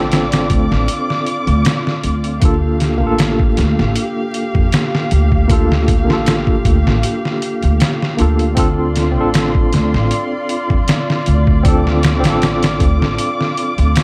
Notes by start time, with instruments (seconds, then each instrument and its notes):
Already playing: upright bass A1, tine electric piano C4 D4 F4, string section F4 D5 D6
0.00 tine electric piano A4
0.12 snare, closed hi-hat
0.32 snare, closed hi-hat
0.50 upright bass D2, kick, closed hi-hat
0.71 upright bass A1, snare
0.88 closed hi-hat
1.10 snare
1.26 closed hi-hat
1.47 upright bass D2, closed hi-hat
1.65 snare, closed hi-hat
1.87 snare
2.04 upright bass D2, closed hi-hat
2.24 closed hi-hat
2.40 upright bass D2, tine electric piano A#3 D4 F4, string section G4 F5, kick, closed hi-hat
2.45 tine electric piano A4
2.80 snare, closed hi-hat
2.98 tine electric piano A#3 D4
3.02 upright bass A1, tine electric piano F4
3.06 tine electric piano A4
3.19 snare, closed hi-hat
3.39 kick
3.57 upright bass D2, snare, closed hi-hat
3.79 upright bass A1, snare
3.96 closed hi-hat
4.34 closed hi-hat
4.55 upright bass F2, kick
4.72 snare, closed hi-hat
4.95 snare
5.11 upright bass D2, closed hi-hat
5.32 kick
5.48 tine electric piano A#3 D4 F4, kick, closed hi-hat
5.53 tine electric piano A4
5.72 snare
5.88 kick, closed hi-hat
6.04 tine electric piano A#3 D4
6.09 upright bass A1, tine electric piano F4 A4, snare
6.26 snare, closed hi-hat
6.47 kick
6.65 upright bass D2, kick, closed hi-hat
6.87 upright bass A1, snare
7.03 closed hi-hat
7.25 snare
7.42 closed hi-hat
7.62 upright bass D2, closed hi-hat
7.80 snare, closed hi-hat
8.02 snare
8.17 upright bass D2, tine electric piano A#3 D4 F4, closed hi-hat
8.21 tine electric piano A4
8.39 closed hi-hat
8.55 upright bass D2, tine electric piano C4 D4 F4, string section F4 D5 C6, kick, closed hi-hat
8.59 tine electric piano A4
8.96 snare, closed hi-hat
9.12 tine electric piano C4 D4
9.17 upright bass A1, tine electric piano F4 A4
9.34 snare, closed hi-hat
9.55 kick
9.73 upright bass D2, snare, closed hi-hat
9.94 upright bass A1, snare
10.11 closed hi-hat
10.49 closed hi-hat
10.70 upright bass F2, kick
10.88 snare, closed hi-hat
11.10 snare
11.26 upright bass D2, closed hi-hat
11.47 kick
11.63 tine electric piano C4 D4 F4, string section D6, kick, closed hi-hat
11.68 tine electric piano A4
11.87 snare
12.03 snare, closed hi-hat
12.20 tine electric piano C4 D4, closed hi-hat
12.25 upright bass A1, tine electric piano F4, snare
12.29 tine electric piano A4
12.42 snare, closed hi-hat
12.63 snare, closed hi-hat
12.80 upright bass D2, kick, closed hi-hat
13.01 upright bass A1, snare
13.18 closed hi-hat
13.41 snare
13.57 closed hi-hat
13.78 upright bass D2, closed hi-hat
13.96 snare, closed hi-hat